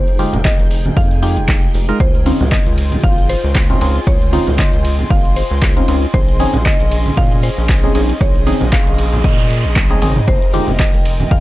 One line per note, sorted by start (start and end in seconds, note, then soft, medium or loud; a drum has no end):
0.00 0.26 F1 loud
0.00 3.67 D#4 medium
0.00 10.29 G#4 medium
0.00 0.41 C5 medium
0.00 10.29 G5 medium
0.08 closed hi-hat medium
0.19 0.38 G#3 loud
0.19 0.38 D#4 medium
0.19 0.38 F4 medium
0.19 0.38 G4 loud
0.19 open hi-hat loud
0.19 high conga medium
0.33 0.50 F1 medium
0.33 closed hi-hat soft
0.33 low conga loud
0.45 0.98 D#5 loud
0.45 kick loud
0.45 clap loud
0.45 closed hi-hat medium
0.45 high conga medium
0.59 0.90 F1 medium
0.59 closed hi-hat medium
0.71 open hi-hat loud
0.85 closed hi-hat soft
0.85 muted conga soft
0.85 high conga medium
0.85 low conga medium
0.97 1.39 F2 medium
0.97 1.08 F5 loud
0.97 kick loud
0.97 open hi-hat medium
1.11 closed hi-hat soft
1.22 1.85 G#3 medium
1.22 1.85 D#4 medium
1.22 1.85 F4 medium
1.22 1.85 G4 medium
1.22 1.71 G5 loud
1.22 open hi-hat loud
1.37 1.68 F1 medium
1.37 closed hi-hat soft
1.48 kick loud
1.48 clap loud
1.48 closed hi-hat medium
1.63 closed hi-hat medium
1.74 1.92 F1 medium
1.74 open hi-hat loud
1.89 1.99 G#3 loud
1.89 1.99 D#4 medium
1.89 1.99 F4 medium
1.89 1.99 A#4 loud
1.89 closed hi-hat soft
2.00 2.33 C#2 loud
2.00 7.78 F4 medium
2.00 2.48 C5 medium
2.00 kick loud
2.00 closed hi-hat medium
2.13 11.40 D#5 medium
2.13 closed hi-hat medium
2.26 2.45 C4 loud
2.26 2.45 C#4 medium
2.26 2.45 D#4 medium
2.26 2.45 F4 loud
2.26 11.40 C6 medium
2.26 open hi-hat loud
2.26 ride medium
2.26 high conga medium
2.41 2.56 C#2 medium
2.41 closed hi-hat soft
2.41 low conga loud
2.52 3.00 D#5 loud
2.52 kick loud
2.52 clap loud
2.52 closed hi-hat medium
2.52 high conga medium
2.66 2.97 C#2 medium
2.66 closed hi-hat medium
2.78 open hi-hat loud
2.78 ride medium
2.91 closed hi-hat soft
2.91 muted conga soft
2.91 high conga medium
2.91 low conga medium
3.04 3.36 G#1 loud
3.04 3.30 F5 loud
3.04 kick loud
3.04 closed hi-hat medium
3.18 closed hi-hat soft
3.29 3.78 C5 medium
3.29 open hi-hat loud
3.29 ride medium
3.44 3.75 C#2 loud
3.55 kick loud
3.55 clap loud
3.55 closed hi-hat medium
3.70 3.79 C4 medium
3.70 3.79 C#4 medium
3.70 3.79 D#4 medium
3.70 3.79 F4 loud
3.70 closed hi-hat medium
3.70 low conga medium
3.81 3.99 C#2 medium
3.81 4.00 C4 medium
3.81 4.00 C#4 medium
3.81 4.00 D#4 medium
3.81 4.00 F4 medium
3.81 open hi-hat loud
3.81 ride medium
3.96 closed hi-hat soft
4.07 4.39 C#2 loud
4.07 4.60 C#5 loud
4.07 kick loud
4.07 closed hi-hat medium
4.22 closed hi-hat medium
4.33 4.52 C4 loud
4.33 4.52 C#4 medium
4.33 4.52 D#4 medium
4.33 4.52 F4 loud
4.33 open hi-hat loud
4.33 ride medium
4.33 high conga medium
4.47 4.63 C#2 medium
4.47 closed hi-hat soft
4.47 low conga medium
4.58 5.12 D#5 loud
4.58 kick loud
4.58 clap loud
4.58 closed hi-hat medium
4.58 high conga medium
4.73 5.04 C#2 medium
4.73 closed hi-hat medium
4.85 open hi-hat loud
4.85 ride medium
4.99 closed hi-hat soft
4.99 muted conga medium
4.99 high conga medium
4.99 low conga medium
5.10 5.43 G#1 loud
5.10 5.35 F5 loud
5.10 kick loud
5.10 open hi-hat medium
5.25 closed hi-hat medium
5.36 5.84 C5 medium
5.36 open hi-hat loud
5.36 ride medium
5.51 5.82 C#2 loud
5.62 kick loud
5.62 clap loud
5.62 closed hi-hat medium
5.77 5.86 C4 medium
5.77 5.86 C#4 medium
5.77 5.86 D#4 medium
5.77 5.86 F4 loud
5.77 closed hi-hat medium
5.88 6.06 C#2 medium
5.88 6.07 C4 medium
5.88 6.07 C#4 medium
5.88 6.07 D#4 medium
5.88 6.07 F4 medium
5.88 open hi-hat loud
5.88 ride medium
6.03 closed hi-hat soft
6.14 6.46 A#1 loud
6.14 10.28 C#4 loud
6.14 6.67 C5 medium
6.14 kick loud
6.14 closed hi-hat medium
6.28 closed hi-hat medium
6.38 6.58 C4 loud
6.38 6.58 C#4 medium
6.38 6.58 D#4 medium
6.38 10.28 G#4 loud
6.38 6.58 G#4 loud
6.38 open hi-hat loud
6.38 ride medium
6.38 high conga medium
6.53 6.70 A#1 medium
6.53 closed hi-hat soft
6.53 low conga medium
6.66 7.19 D#5 loud
6.66 kick loud
6.66 clap loud
6.66 closed hi-hat medium
6.66 high conga medium
6.80 7.11 A#1 medium
6.80 closed hi-hat medium
6.91 open hi-hat loud
6.91 ride medium
7.06 closed hi-hat soft
7.06 muted conga medium
7.06 high conga medium
7.06 low conga medium
7.17 7.50 A#2 loud
7.17 7.29 F5 loud
7.17 kick loud
7.17 closed hi-hat medium
7.32 closed hi-hat medium
7.43 7.91 C5 medium
7.43 open hi-hat loud
7.43 ride medium
7.58 7.89 A#1 loud
7.69 kick loud
7.69 clap loud
7.69 closed hi-hat medium
7.84 7.93 C4 medium
7.84 7.93 C#4 medium
7.84 7.93 D#4 medium
7.84 7.93 G#4 loud
7.84 closed hi-hat medium
7.84 low conga medium
7.95 8.13 A#1 medium
7.95 8.14 C4 medium
7.95 8.14 C#4 medium
7.95 8.14 D#4 medium
7.95 8.14 G#4 medium
7.95 open hi-hat loud
7.95 ride medium
8.10 closed hi-hat soft
8.21 8.53 A#1 loud
8.21 8.69 C#5 loud
8.21 kick loud
8.21 closed hi-hat medium
8.21 noise sweep medium
8.35 closed hi-hat medium
8.35 muted conga soft
8.47 8.65 C4 loud
8.47 8.65 C#4 medium
8.47 8.65 D#4 medium
8.47 8.65 G#4 loud
8.47 open hi-hat loud
8.47 ride medium
8.47 high conga medium
8.61 8.77 A#1 medium
8.61 closed hi-hat soft
8.61 low conga loud
8.73 9.26 F5 loud
8.73 kick loud
8.73 clap loud
8.73 closed hi-hat medium
8.73 high conga medium
8.87 9.26 A#1 medium
8.87 closed hi-hat medium
8.98 open hi-hat loud
8.98 ride medium
9.13 closed hi-hat soft
9.13 muted conga medium
9.13 high conga medium
9.13 low conga medium
9.24 9.66 A#2 medium
9.24 9.98 D#5 medium
9.24 kick loud
9.24 open hi-hat medium
9.39 closed hi-hat medium
9.50 open hi-hat loud
9.50 ride medium
9.65 9.96 A#1 medium
9.65 closed hi-hat soft
9.76 kick loud
9.76 clap loud
9.76 closed hi-hat medium
9.76 high tom medium
9.90 10.00 C4 medium
9.90 10.00 C#4 medium
9.90 10.00 D#4 medium
9.90 10.00 G#4 loud
9.90 closed hi-hat medium
9.90 high tom medium
10.02 10.20 G#1 medium
10.02 10.21 C4 medium
10.02 10.21 C#4 medium
10.02 10.21 D#4 medium
10.02 10.21 G#4 medium
10.02 open hi-hat loud
10.02 mid tom medium
10.02 ride medium
10.16 closed hi-hat soft
10.16 mid tom medium
10.28 10.60 F1 loud
10.28 11.40 A#4 medium
10.28 10.81 C5 medium
10.28 11.40 G5 medium
10.28 11.40 A#5 medium
10.28 kick loud
10.28 closed hi-hat medium
10.42 closed hi-hat medium
10.49 11.40 G#5 medium
10.53 10.72 G#3 loud
10.53 10.72 D#4 medium
10.53 10.72 F4 medium
10.53 10.72 G4 loud
10.53 open hi-hat loud
10.53 ride medium
10.53 high conga medium
10.67 10.84 F1 medium
10.67 closed hi-hat soft
10.67 low conga loud
10.79 11.28 D#5 loud
10.79 kick loud
10.79 clap loud
10.79 closed hi-hat medium
10.79 high conga medium
10.94 11.25 F1 medium
10.94 closed hi-hat medium
11.05 open hi-hat loud
11.05 ride medium
11.20 closed hi-hat soft
11.20 muted conga medium
11.20 high conga medium
11.20 low conga medium
11.31 11.40 F2 loud
11.31 11.40 F5 loud
11.31 kick loud
11.31 closed hi-hat medium